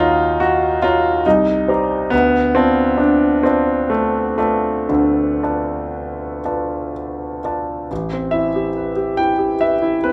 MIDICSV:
0, 0, Header, 1, 2, 480
1, 0, Start_track
1, 0, Tempo, 865801
1, 1175, Time_signature, 3, 2, 24, 8
1, 1175, Tempo, 899550
1, 2135, Tempo, 978793
1, 2615, Tempo, 1043478
1, 3095, Tempo, 981997
1, 4055, Tempo, 860832
1, 5294, End_track
2, 0, Start_track
2, 0, Title_t, "Grand piano"
2, 0, Program_c, 0, 0
2, 0, Control_c, 0, 64, 127
2, 0, Note_on_c, 0, 39, 39
2, 0, Note_on_c, 0, 63, 75
2, 0, Note_on_c, 0, 65, 77
2, 0, Note_on_c, 0, 66, 31
2, 0, Note_on_c, 0, 73, 28
2, 0, Note_on_c, 0, 77, 31
2, 0, Note_on_c, 0, 82, 33
2, 214, Note_off_c, 0, 65, 0
2, 214, Note_off_c, 0, 66, 0
2, 222, Note_on_c, 0, 66, 69
2, 434, Note_off_c, 0, 73, 0
2, 438, Note_off_c, 0, 77, 0
2, 440, Note_off_c, 0, 82, 0
2, 453, Note_off_c, 0, 66, 0
2, 457, Note_on_c, 0, 65, 72
2, 461, Note_on_c, 0, 66, 30
2, 461, Note_on_c, 0, 73, 33
2, 466, Note_on_c, 0, 77, 32
2, 466, Note_on_c, 0, 82, 34
2, 675, Note_off_c, 0, 66, 0
2, 676, Note_off_c, 0, 73, 0
2, 678, Note_off_c, 0, 77, 0
2, 678, Note_off_c, 0, 82, 0
2, 696, Note_off_c, 0, 65, 0
2, 698, Note_off_c, 0, 63, 0
2, 698, Note_on_c, 0, 63, 69
2, 701, Note_on_c, 0, 36, 40
2, 702, Control_c, 0, 64, 0
2, 704, Note_off_c, 0, 39, 0
2, 792, Control_c, 0, 64, 127
2, 931, Note_off_c, 0, 36, 0
2, 934, Note_on_c, 0, 72, 31
2, 938, Note_on_c, 0, 67, 28
2, 938, Note_on_c, 0, 82, 33
2, 942, Note_on_c, 0, 74, 29
2, 1153, Note_off_c, 0, 72, 0
2, 1155, Note_off_c, 0, 67, 0
2, 1155, Note_off_c, 0, 82, 0
2, 1157, Note_off_c, 0, 74, 0
2, 1166, Note_on_c, 0, 59, 74
2, 1170, Note_on_c, 0, 38, 41
2, 1177, Note_off_c, 0, 63, 0
2, 1184, Control_c, 0, 64, 0
2, 1292, Control_c, 0, 64, 127
2, 1397, Note_off_c, 0, 38, 0
2, 1403, Note_off_c, 0, 59, 0
2, 1403, Note_on_c, 0, 60, 64
2, 1406, Note_on_c, 0, 65, 30
2, 1406, Note_on_c, 0, 71, 30
2, 1411, Note_on_c, 0, 81, 34
2, 1412, Note_on_c, 0, 74, 28
2, 1632, Note_on_c, 0, 62, 55
2, 1643, Note_off_c, 0, 60, 0
2, 1867, Note_off_c, 0, 65, 0
2, 1867, Note_off_c, 0, 71, 0
2, 1870, Note_off_c, 0, 74, 0
2, 1870, Note_off_c, 0, 81, 0
2, 1877, Note_on_c, 0, 60, 56
2, 1882, Note_off_c, 0, 62, 0
2, 1884, Note_on_c, 0, 71, 28
2, 1885, Note_on_c, 0, 65, 26
2, 1890, Note_on_c, 0, 74, 29
2, 1890, Note_on_c, 0, 81, 28
2, 2124, Note_on_c, 0, 57, 52
2, 2128, Note_off_c, 0, 60, 0
2, 2344, Note_off_c, 0, 71, 0
2, 2345, Note_off_c, 0, 65, 0
2, 2347, Note_off_c, 0, 74, 0
2, 2347, Note_off_c, 0, 81, 0
2, 2353, Note_off_c, 0, 57, 0
2, 2360, Note_on_c, 0, 57, 53
2, 2363, Note_on_c, 0, 65, 23
2, 2366, Note_on_c, 0, 71, 23
2, 2367, Note_on_c, 0, 74, 23
2, 2371, Note_on_c, 0, 81, 25
2, 2593, Note_off_c, 0, 65, 0
2, 2595, Note_off_c, 0, 71, 0
2, 2595, Note_off_c, 0, 74, 0
2, 2597, Note_off_c, 0, 81, 0
2, 2611, Note_off_c, 0, 57, 0
2, 2611, Note_on_c, 0, 38, 32
2, 2611, Note_on_c, 0, 50, 47
2, 2847, Note_off_c, 0, 38, 0
2, 2861, Note_on_c, 0, 65, 21
2, 2862, Note_on_c, 0, 74, 22
2, 2862, Note_on_c, 0, 81, 23
2, 2863, Note_on_c, 0, 71, 24
2, 3320, Note_off_c, 0, 65, 0
2, 3320, Note_off_c, 0, 81, 0
2, 3321, Note_off_c, 0, 71, 0
2, 3321, Note_off_c, 0, 74, 0
2, 3343, Note_on_c, 0, 65, 22
2, 3343, Note_on_c, 0, 71, 22
2, 3346, Note_on_c, 0, 74, 23
2, 3346, Note_on_c, 0, 81, 22
2, 3575, Note_off_c, 0, 50, 0
2, 3806, Note_off_c, 0, 65, 0
2, 3806, Note_off_c, 0, 71, 0
2, 3808, Note_off_c, 0, 74, 0
2, 3808, Note_off_c, 0, 81, 0
2, 3826, Note_on_c, 0, 65, 20
2, 3831, Note_on_c, 0, 71, 21
2, 3832, Note_on_c, 0, 74, 24
2, 3836, Note_on_c, 0, 81, 22
2, 4037, Note_off_c, 0, 65, 0
2, 4039, Note_off_c, 0, 71, 0
2, 4040, Note_off_c, 0, 74, 0
2, 4042, Note_off_c, 0, 81, 0
2, 4057, Note_on_c, 0, 33, 35
2, 4063, Control_c, 0, 64, 0
2, 4149, Control_c, 0, 64, 127
2, 4180, Note_on_c, 0, 60, 26
2, 4282, Note_on_c, 0, 76, 55
2, 4293, Note_on_c, 0, 64, 26
2, 4374, Note_off_c, 0, 60, 0
2, 4417, Note_on_c, 0, 67, 28
2, 4489, Note_off_c, 0, 64, 0
2, 4536, Note_on_c, 0, 71, 26
2, 4609, Note_off_c, 0, 67, 0
2, 4645, Note_on_c, 0, 67, 29
2, 4727, Note_off_c, 0, 71, 0
2, 4762, Note_on_c, 0, 79, 64
2, 4768, Note_off_c, 0, 76, 0
2, 4772, Note_on_c, 0, 64, 28
2, 4841, Note_off_c, 0, 67, 0
2, 4880, Note_on_c, 0, 67, 28
2, 4964, Note_off_c, 0, 64, 0
2, 5004, Note_on_c, 0, 76, 60
2, 5007, Note_off_c, 0, 79, 0
2, 5007, Note_on_c, 0, 71, 29
2, 5078, Note_off_c, 0, 67, 0
2, 5123, Note_on_c, 0, 64, 33
2, 5202, Note_off_c, 0, 71, 0
2, 5244, Note_on_c, 0, 71, 55
2, 5248, Note_on_c, 0, 60, 28
2, 5249, Note_off_c, 0, 76, 0
2, 5294, Note_off_c, 0, 33, 0
2, 5294, Note_off_c, 0, 60, 0
2, 5294, Note_off_c, 0, 64, 0
2, 5294, Note_off_c, 0, 71, 0
2, 5294, End_track
0, 0, End_of_file